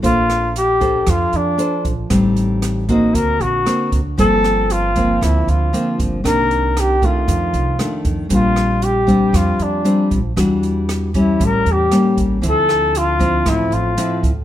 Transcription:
<<
  \new Staff \with { instrumentName = "Flugelhorn" } { \time 4/4 \key d \minor \tempo 4 = 116 f'4 g'4 f'8 d'4 r8 | r4. ees'8 ais'8 fis'4 r8 | a'4 f'4 e'8 f'4 r8 | bes'4 g'8 f'2 r8 |
f'4 g'4 f'8 d'4 r8 | r4. e'8 bes'8 g'4 r8 | a'4 f'4 e'8 f'4 r8 | }
  \new Staff \with { instrumentName = "Nylon-string guitar" } { \time 4/4 \key d \minor << { <d' a' c''>4 r8 <d' a' c''>4. <d' a' c''>8 r8 | <g c' ees'>4. <bes c' fis'>4. <ais c' fis'>8 r8 | <f bes c'>4. <f bes c'>4. <f bes c'>4 | <ees bes d'>4. <ees a d'>4. <ees a d'>4 |
<g c' d'>4. <g c' d'>4. <g c' d'>8 r8 | <g d' fis'>4. <g cis'>4. <g bes cis'>4 | <f c' e'>4. <f c' e'>4. <f c' e'>8 r8 | } \\ { bes2 f2 | a,2 d2 | g,2 d2 | c2 f,2 |
bes,2 f2 | e2 a,2 | d2 a,2 | } >> }
  \new Staff \with { instrumentName = "Upright bass" } { \clef bass \time 4/4 \key d \minor bes,,2 f,8 f,8 r8 bes,,8 | a,,2 d,8 ais,,8 r8 d,8 | g,,2 d,8 d,8 r8 g,,8 | c,2 f,8 c,8 r8 f,8 |
bes,,2 f,8 f,8 r8 bes,,8 | e,2 a,,8 e,8 r8 a,,8 | d,2 a,,8 a,,8 r8 d,8 | }
  \new DrumStaff \with { instrumentName = "Drums" } \drummode { \time 4/4 <hh bd>8 <hh ss>8 hh8 <hh bd>8 <hh bd ss>8 hh8 hh8 <hh bd>8 | <hh bd ss>8 hh8 <hh ss>8 <hh bd>8 <hh bd>8 hh8 <hh ss>8 <hh bd>8 | <hh bd>8 <hh ss>8 hh8 <hh bd>8 <hh bd ss>8 hh8 hh8 <hh bd>8 | <hh bd ss>8 hh8 <hh ss>8 <hh bd>8 <hh bd>8 hh8 <hh ss>8 <hh bd>8 |
<hh bd>8 <hh ss>8 hh8 <hh bd>8 <hh bd ss>8 hh8 hh8 <hh bd>8 | <hh bd ss>8 hh8 <hh ss>8 <hh bd>8 <hh bd>8 hh8 <hh ss>8 <hh bd>8 | <hh bd>8 <hh ss>8 hh8 <hh bd>8 <hh bd ss>8 hh8 hh8 <hh bd>8 | }
>>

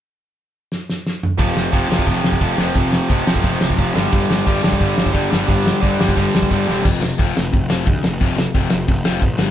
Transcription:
<<
  \new Staff \with { instrumentName = "Distorted electric guitar" } { \clef bass \time 4/4 \key f \lydian \tempo 4 = 176 r1 | <f, c f>4 <f, c f>8 <f, c f>8 <f, c f>4 <f, c f>8 <f, c f>8 | <f, c f>4 <f, c f>8 <f, c f>8 <f, c f>4 <f, c f>8 <g, d g>8 | <g, d g>4 <g, d g>8 <g, d g>8 <g, d g>4 <g, d g>8 <g, d g>8 |
<g, d g>4 <g, d g>8 <g, d g>8 <g, d g>4 <g, d g>8 <g, d g>8 | r1 | r1 | }
  \new Staff \with { instrumentName = "Overdriven electric guitar" } { \clef bass \time 4/4 \key f \lydian r1 | <f, c f>4 <f, c f>8 <f, c f>8 <f, c f>4 <f, c f>8 <f, c f>8 | <f, c f>4 <f, c f>8 <f, c f>8 <f, c f>4 <f, c f>8 <g, d g>8 | <g, d g>4 <g, d g>8 <g, d g>8 <g, d g>4 <g, d g>8 <g, d g>8 |
<g, d g>4 <g, d g>8 <g, d g>8 <g, d g>4 <g, d g>8 <g, d g>8 | <f, c f>8 <f, c>8 <f, c f>8 <f, c>8 <f, c>8 <f, c f>8 <f, c>8 <f, c>8 | <f, c f>8 <f, c>8 <f, c f>8 <f, c>8 <f, c>8 <f, c f>8 <f, c>8 <g, d g>8 | }
  \new Staff \with { instrumentName = "Picked electric bass" } { \clef bass \time 4/4 \key f \lydian r1 | f,,8 f,,8 f,,8 f,,8 f,,8 f,,8 f,,8 f,,8 | f,,4 f,,8 f,,8 f,,8 f,,8 f,,8 g,,8 | g,,8 g,,8 g,,8 g,,8 g,,8 g,,8 g,,8 g,,8 |
g,,4 g,,8 g,,8 g,,8 g,,8 g,,8 e,,8 | f,,4 f,,8 f,,8 f,,8 f,,8 d,8 f,,8 | f,,4 f,,8 f,,8 f,,8 f,,8 a,,8 g,,8 | }
  \new DrumStaff \with { instrumentName = "Drums" } \drummode { \time 4/4 r4 r4 sn8 sn8 sn8 toml8 | <hho bd>8 sn8 <hho bd>8 sn16 bd16 <hho bd>8 sn16 bd16 <hho bd>8 sn8 | <hho bd>8 sn8 <hho bd>8 sn16 bd16 <hho bd>8 sn16 bd16 <hho bd>8 sn8 | <hho bd>8 sn8 <hho bd>8 sn16 bd16 <hho bd>8 sn16 bd16 <hho bd>8 sn8 |
<hho bd>8 sn8 <hho bd>8 sn16 bd16 <hho bd>8 sn16 bd16 <hho bd>8 sn8 | <cymc bd>8 sn8 <hho bd>8 sn8 <hho bd>8 sn8 <hho bd>8 sn8 | <hho bd>8 sn8 <hho bd>8 sn8 <hho bd>8 sn8 <hho bd>8 sn8 | }
>>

